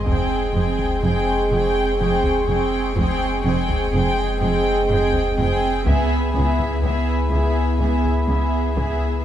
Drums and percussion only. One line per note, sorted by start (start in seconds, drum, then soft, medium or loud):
0.06 taiko medium
0.78 taiko medium
2.23 taiko medium
2.96 taiko medium
3.69 taiko medium
5.13 taiko medium
5.86 taiko medium
6.59 taiko medium
8.05 taiko medium
8.77 taiko medium